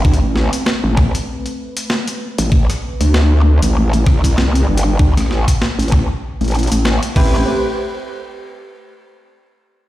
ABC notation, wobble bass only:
X:1
M:4/4
L:1/16
Q:"Swing 16ths" 1/4=97
K:Am
V:1 name="Wobble bass" clef=bass
D,, A,,,2 z2 A,,,2 z8 A,,, | A,,, z2 D,,4 A,,,3 C,,4 G,,,2 | D,, A,,,2 z2 A,,,2 z2 A,,,2 A,,,2 z A,,,2 | z16 |]